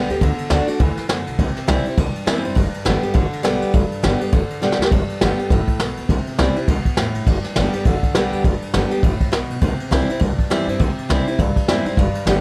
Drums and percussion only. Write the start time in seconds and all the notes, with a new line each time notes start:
0.10 ride
0.21 kick, ride
0.38 ride
0.50 snare, ride
0.68 ride
0.80 kick, ride
0.97 snare, ride
1.09 snare, ride
1.27 ride
1.39 kick, ride
1.56 snare, ride
1.68 snare, ride
1.85 ride
1.98 kick, ride
2.15 ride
2.27 snare, ride
2.44 ride
2.56 kick, snare, ride
2.74 ride
2.86 snare, ride
3.03 ride
3.15 kick, snare, ride
3.33 ride
3.44 snare, ride
3.62 ride
3.74 kick, ride
3.92 ride
4.04 snare, ride
4.21 ride
4.33 kick, snare, ride
4.50 ride
4.62 snare
4.72 snare
4.82 snare
4.92 kick, ride
5.09 ride
5.21 snare, ride
5.39 ride
5.50 kick, ride
5.68 kick, ride
5.80 snare, ride
5.97 ride
6.09 kick, ride
6.27 ride
6.39 snare, ride
6.56 ride
6.68 kick, ride
6.85 kick, ride
6.97 snare, ride
7.15 ride
7.26 kick, ride
7.44 snare, ride
7.56 snare, ride
7.73 ride
7.85 kick, ride
8.03 kick, ride
8.15 snare, ride
8.33 ride
8.44 kick, ride
8.62 ride
8.74 snare, ride
8.91 ride
9.03 kick, ride
9.21 kick, ride
9.33 snare, ride
9.50 ride
9.62 kick, ride
9.80 ride
9.92 snare, ride
10.10 ride
10.21 kick, ride
10.39 kick, ride
10.51 snare, ride
10.69 ride
10.80 kick, ride
10.98 ride
11.10 snare, ride
11.28 ride
11.39 kick, ride
11.56 kick, ride
11.68 snare, ride
11.86 ride
11.97 kick, ride
12.15 ride
12.27 snare, ride